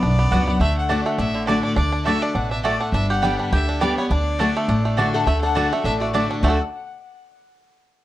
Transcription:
0.00 0.27 B1 medium
0.00 0.58 F#2 medium
0.00 0.18 B3 medium
0.00 0.89 D4 medium
0.00 0.51 D5 loud
0.19 0.30 B3 medium
0.31 0.56 C#2 medium
0.31 0.60 F#3 medium
0.31 0.41 B3 medium
0.31 0.46 B3 medium
0.31 0.60 B3 medium
0.31 0.60 D4 medium
0.31 0.41 F#4 medium
0.31 0.60 F#4 medium
0.31 0.42 D5 medium
0.31 0.42 F#5 loud
0.48 0.60 B3 medium
0.48 0.61 F#5 loud
0.60 1.01 D2 medium
0.60 0.88 D3 medium
0.60 1.03 A3 medium
0.60 0.76 E5 loud
0.77 1.04 F#5 loud
0.89 1.18 D3 medium
0.89 0.99 A3 medium
0.89 1.18 A3 medium
0.89 1.18 D4 medium
0.89 1.00 F#4 medium
0.89 1.18 F#4 medium
0.89 1.00 D5 loud
0.89 1.00 A5 medium
1.06 1.45 A3 medium
1.18 1.60 A1 medium
1.18 1.75 A2 medium
1.18 1.47 D4 medium
1.18 1.46 E5 medium
1.35 1.74 D3 medium
1.47 1.76 D3 medium
1.47 1.58 A3 medium
1.47 1.76 A3 medium
1.47 1.63 D4 medium
1.47 1.76 D4 medium
1.47 1.58 F#4 loud
1.47 1.77 F#4 medium
1.47 1.58 D5 loud
1.47 1.63 D5 medium
1.47 1.58 A5 loud
1.63 1.76 D4 medium
1.63 1.76 D5 medium
1.76 2.18 D2 medium
1.76 2.05 D3 medium
1.76 1.92 D4 medium
1.76 2.04 D5 loud
1.92 2.22 D4 medium
2.05 2.34 D3 medium
2.05 2.16 A3 medium
2.05 2.48 A3 medium
2.05 2.35 A3 loud
2.05 2.35 D4 medium
2.05 2.16 F#4 loud
2.05 2.35 F#4 loud
2.05 2.16 D5 loud
2.05 2.23 E5 loud
2.05 2.16 A5 loud
2.22 2.35 D4 medium
2.22 2.36 D5 medium
2.35 2.76 A1 medium
2.35 2.63 B2 medium
2.35 2.51 D4 medium
2.35 2.50 F#5 loud
2.51 2.81 D4 medium
2.51 2.63 E5 medium
2.64 2.93 A2 medium
2.64 2.74 A3 medium
2.64 2.94 A3 medium
2.64 2.74 F#4 medium
2.64 2.82 D5 medium
2.64 2.74 D5 loud
2.64 2.75 A5 loud
2.80 2.94 D4 medium
2.80 2.93 F#5 loud
2.92 3.34 G1 loud
2.92 3.50 G2 medium
2.92 3.39 D4 medium
2.92 3.08 E5 loud
3.09 3.49 G4 medium
3.09 3.49 F#5 loud
3.22 3.51 D3 medium
3.22 3.65 G3 medium
3.22 3.51 G3 medium
3.22 3.32 B3 medium
3.22 3.52 B3 medium
3.22 3.33 G4 medium
3.22 3.51 G4 loud
3.22 3.33 D5 medium
3.22 3.33 G5 loud
3.39 3.68 D4 medium
3.52 3.93 D2 medium
3.52 3.80 D3 medium
3.52 3.94 G4 medium
3.52 3.79 E5 loud
3.69 4.11 D4 medium
3.80 3.97 D3 medium
3.80 4.10 G3 medium
3.80 3.97 G3 medium
3.80 3.91 B3 medium
3.80 3.98 B3 medium
3.80 3.91 G4 medium
3.80 3.96 G4 medium
3.80 3.96 D5 medium
3.80 3.91 D5 loud
3.80 3.91 G5 loud
3.97 4.11 B3 medium
3.97 4.10 G4 medium
3.97 4.09 C#5 medium
4.10 4.52 D2 medium
4.10 4.38 D3 medium
4.10 4.39 D4 medium
4.10 4.94 D5 medium
4.39 4.67 D3 medium
4.39 4.49 A3 loud
4.39 4.68 A3 medium
4.39 4.68 D4 medium
4.39 4.49 F#4 loud
4.39 4.68 F#4 medium
4.39 4.50 D5 medium
4.39 4.50 A5 loud
4.57 4.84 A3 medium
4.68 5.10 A1 medium
4.68 5.24 A2 medium
4.68 4.97 D4 medium
4.85 5.13 A3 medium
4.97 5.26 D3 medium
4.97 5.07 A3 medium
4.97 5.26 A3 medium
4.97 5.27 D4 medium
4.97 5.26 D4 medium
4.97 5.07 F#4 medium
4.97 5.27 F#4 loud
4.97 5.08 D5 loud
4.97 5.08 A5 medium
5.14 5.26 A3 medium
5.14 5.25 A4 medium
5.14 5.25 F#5 loud
5.25 5.68 D2 loud
5.25 5.54 D3 medium
5.25 5.69 A3 medium
5.25 5.41 A4 medium
5.25 5.41 E5 loud
5.41 5.55 D4 medium
5.41 5.82 A4 medium
5.41 5.81 F#5 loud
5.55 5.71 D3 medium
5.55 5.65 A3 medium
5.55 5.72 A3 medium
5.55 5.84 D4 medium
5.55 5.72 D4 medium
5.55 5.66 F#4 medium
5.55 5.71 F#4 medium
5.55 5.66 D5 loud
5.55 5.66 A5 loud
5.72 6.00 A3 medium
5.72 5.86 D4 soft
5.72 5.85 F#4 medium
5.84 6.26 A1 medium
5.84 6.41 A2 medium
5.84 6.13 D4 medium
5.84 6.00 A4 medium
5.84 5.99 E5 loud
6.00 6.41 A3 medium
6.00 6.13 F#4 medium
6.00 6.12 D5 medium
6.13 6.41 D3 medium
6.13 6.24 A3 medium
6.13 6.42 A3 medium
6.13 6.29 D4 medium
6.13 6.42 D4 medium
6.13 6.35 F#4 medium
6.13 6.24 F#4 medium
6.13 6.43 F#4 medium
6.13 6.35 D5 medium
6.13 6.24 D5 loud
6.13 6.25 A5 loud
6.31 6.43 D4 medium
6.42 6.58 D2 loud
6.42 6.56 D3 medium
6.42 6.58 A3 medium
6.42 6.56 A3 medium
6.42 6.59 A3 medium
6.42 6.57 D4 medium
6.42 6.49 D4 medium
6.42 6.56 F#4 medium
6.42 6.57 F#4 medium
6.42 6.57 D5 medium
6.42 6.58 F#5 medium
6.42 6.57 A5 medium
6.48 6.61 F#4 medium
6.48 6.62 A4 medium

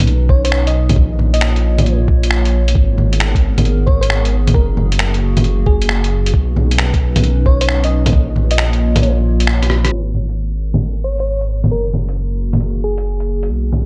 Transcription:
0.00 0.95 B1 medium
0.00 0.94 C#4 medium
0.00 0.94 D#4 medium
0.00 0.94 B4 medium
0.00 closed hi-hat medium
0.00 low bongo medium
0.07 closed hi-hat soft
0.29 0.42 C#5 medium
0.29 kick loud
0.45 0.68 C#5 medium
0.45 closed hi-hat medium
0.52 finger snap loud
0.67 0.97 D#5 medium
0.67 closed hi-hat soft
0.89 closed hi-hat medium
0.89 low bongo medium
0.96 2.74 A#1 medium
0.96 2.74 A#3 medium
0.96 2.74 F4 medium
0.96 2.74 C#5 medium
0.96 kick loud
1.19 low bongo soft
1.34 1.95 D#5 medium
1.34 closed hi-hat soft
1.41 finger snap loud
1.56 closed hi-hat soft
1.78 closed hi-hat medium
1.78 low bongo medium
1.86 closed hi-hat soft
2.08 kick loud
2.23 closed hi-hat medium
2.31 finger snap loud
2.45 closed hi-hat soft
2.68 closed hi-hat medium
2.75 4.53 G#1 medium
2.75 4.53 B3 medium
2.75 6.30 G#4 medium
2.75 4.53 A#4 medium
2.75 kick loud
2.98 low bongo soft
3.13 closed hi-hat soft
3.20 finger snap loud
3.35 kick loud
3.35 closed hi-hat soft
3.58 closed hi-hat medium
3.58 low bongo medium
3.65 closed hi-hat soft
3.86 3.99 C#5 medium
3.86 kick loud
4.01 4.25 C#5 medium
4.01 closed hi-hat soft
4.10 finger snap loud
4.25 closed hi-hat soft
4.47 closed hi-hat medium
4.47 low bongo medium
4.54 6.32 F#1 medium
4.54 6.32 A#3 medium
4.54 6.32 F#4 medium
4.54 4.78 A#4 medium
4.54 kick loud
4.77 low bongo soft
4.92 closed hi-hat soft
4.99 finger snap loud
5.14 closed hi-hat soft
5.37 closed hi-hat soft
5.37 low bongo medium
5.44 closed hi-hat soft
5.66 6.31 G#4 medium
5.66 kick loud
5.82 closed hi-hat soft
5.89 finger snap loud
6.04 closed hi-hat soft
6.26 closed hi-hat medium
6.33 8.11 B1 medium
6.33 8.11 C#4 medium
6.33 8.11 D#4 medium
6.33 8.11 B4 medium
6.33 kick loud
6.56 low bongo soft
6.71 closed hi-hat medium
6.78 finger snap loud
6.94 kick loud
6.94 closed hi-hat soft
7.16 closed hi-hat medium
7.16 low bongo medium
7.24 closed hi-hat soft
7.46 7.58 C#5 medium
7.46 kick loud
7.61 7.84 C#5 medium
7.61 closed hi-hat medium
7.69 finger snap medium
7.84 8.14 D#5 medium
7.84 closed hi-hat soft
8.06 closed hi-hat soft
8.06 low bongo medium
8.12 9.91 A#1 medium
8.12 9.90 A#3 medium
8.12 9.90 F4 medium
8.12 9.90 C#5 medium
8.12 kick loud
8.36 low bongo soft
8.51 9.12 D#5 medium
8.51 closed hi-hat medium
8.58 finger snap loud
8.73 closed hi-hat soft
8.96 closed hi-hat medium
8.96 low bongo medium
9.03 closed hi-hat soft
9.40 closed hi-hat medium
9.47 finger snap loud
9.63 cross-stick soft
9.63 closed hi-hat soft
9.70 cross-stick medium
9.85 cross-stick medium
9.85 closed hi-hat medium
9.92 11.70 G#1 medium
9.92 11.70 B3 medium
9.92 13.47 G#4 medium
9.92 11.70 A#4 medium
10.15 low bongo soft
10.29 closed hi-hat soft
10.74 closed hi-hat soft
10.74 low bongo medium
11.04 11.16 C#5 medium
11.19 11.43 C#5 medium
11.19 closed hi-hat soft
11.41 closed hi-hat soft
11.64 closed hi-hat soft
11.64 low bongo medium
11.71 13.49 F#1 medium
11.71 13.49 A#3 medium
11.71 13.49 F#4 medium
11.71 11.95 A#4 medium
11.94 low bongo soft
12.09 closed hi-hat soft
12.53 closed hi-hat medium
12.53 low bongo medium
12.61 closed hi-hat soft
12.84 13.48 G#4 medium
12.98 closed hi-hat medium
13.20 closed hi-hat soft
13.43 closed hi-hat soft
13.50 13.86 B1 medium
13.50 13.86 C#4 medium
13.50 13.86 D#4 medium
13.50 13.86 B4 medium
13.72 low bongo soft

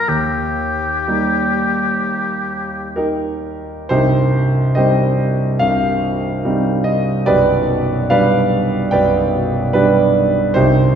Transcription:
0.00 0.12 A#2 soft
0.00 0.12 F3 soft
0.00 0.13 A#3 soft
0.00 0.12 F4 soft
0.00 0.10 A#4 medium
0.08 1.04 D#2 soft
0.08 2.99 G4 medium
1.08 3.88 G3 soft
1.08 3.88 A#3 soft
1.08 2.96 D#4 soft
2.96 3.87 D#4 soft
2.96 3.87 G4 soft
2.96 3.91 A#4 soft
3.89 5.57 C1 soft
3.89 5.57 C2 soft
3.89 4.73 D#4 soft
3.89 4.73 G4 medium
3.89 4.75 C5 medium
4.75 5.57 G3 soft
4.75 5.57 C4 soft
4.75 5.58 D#4 soft
4.75 5.57 G4 soft
4.75 5.57 C5 soft
4.75 5.60 D#5 medium
5.59 7.24 C1 soft
5.59 7.23 C2 soft
5.59 6.85 F5 medium
6.45 7.24 G3 soft
6.45 7.24 C4 soft
6.45 7.24 D#4 soft
6.84 7.27 D#5 medium
7.26 8.88 B0 soft
7.26 8.88 B1 soft
7.26 8.06 G4 medium
7.26 8.06 B4 medium
7.26 8.09 D5 medium
8.10 8.88 G3 soft
8.10 8.89 D4 soft
8.10 8.88 B4 medium
8.10 8.88 D5 soft
8.10 8.92 F5 medium
8.91 10.51 B0 soft
8.91 10.52 B1 soft
8.91 9.70 B4 soft
8.91 9.70 D5 soft
8.91 9.73 G5 medium
9.73 10.52 G3 soft
9.73 10.52 D4 soft
9.73 10.52 G4 soft
9.73 10.55 B4 medium
10.54 10.95 C1 soft
10.54 10.95 C2 soft
10.54 10.95 D#4 medium
10.54 10.95 G4 medium
10.54 10.95 C5 medium

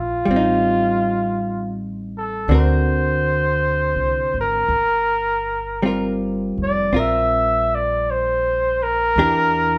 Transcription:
0.00 0.25 A#1 medium
0.00 0.24 G3 soft
0.00 0.29 D4 soft
0.00 0.31 F4 soft
0.00 1.79 F4 medium
0.25 2.45 A1 medium
0.25 2.48 G3 soft
0.31 2.50 C4 soft
0.36 2.52 D#4 soft
2.18 2.57 A4 medium
2.48 3.92 D2 medium
2.48 4.71 D3 soft
2.48 4.72 C4 soft
2.48 4.72 F#4 soft
2.54 4.73 A#4 soft
2.54 4.38 C5 medium
3.96 4.30 C2 soft
4.34 4.68 G#1 medium
4.40 6.20 A#4 medium
4.69 6.53 G1 medium
5.82 9.17 G3 soft
5.82 6.92 C4 soft
5.82 6.93 F4 soft
5.87 6.95 A#4 soft
6.58 6.92 F1 medium
6.63 7.01 D5 medium
6.92 9.12 A#1 medium
6.92 9.16 C4 soft
6.92 9.17 F4 soft
6.92 9.18 A#4 soft
6.99 7.76 E5 medium
7.75 8.12 D5 medium
8.10 8.84 C5 medium
8.83 9.78 A#4 medium
9.16 9.78 E2 medium
9.16 9.78 E3 soft
9.16 9.78 D4 soft
9.16 9.78 G4 soft
9.16 9.78 A#4 soft

